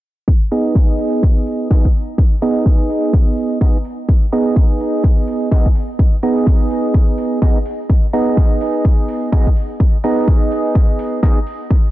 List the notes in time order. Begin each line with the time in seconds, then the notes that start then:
0.28 kick
0.51 B3 D#4 G#4 D#5, open hi-hat
0.75 kick
0.99 open hi-hat
1.23 kick
1.47 open hi-hat
1.71 B3 D#4 G#4 D#5, kick
1.85 kick
1.94 open hi-hat
2.18 kick
2.42 B3 D#4 G#4 D#5, open hi-hat
2.66 kick
2.89 open hi-hat
3.13 kick
3.37 open hi-hat
3.61 B3 D#4 G#4 D#5, kick, open hi-hat
3.85 open hi-hat
4.09 kick
4.32 B3 D#4 G#4 D#5, open hi-hat
4.56 kick
4.80 open hi-hat
5.04 kick
5.28 open hi-hat
5.51 B3 D#4 G#4 D#5, kick
5.66 kick
5.75 open hi-hat
5.99 kick
6.23 B3 D#4 G#4 D#5, open hi-hat
6.47 kick
6.70 open hi-hat
6.94 kick
7.18 open hi-hat
7.42 B3 D#4 G#4 D#5, kick, open hi-hat
7.66 open hi-hat
7.90 kick
8.13 B3 D#4 G#4 D#5, open hi-hat
8.37 kick
8.61 open hi-hat
8.85 kick
9.09 open hi-hat
9.32 B3 D#4 G#4 D#5, kick
9.47 kick
9.56 open hi-hat
9.80 kick
10.04 B3 D#4 G#4 D#5, open hi-hat
10.28 kick
10.51 open hi-hat
10.75 kick
10.99 open hi-hat
11.23 B3 D#4 G#4 D#5, kick, open hi-hat
11.47 open hi-hat
11.71 kick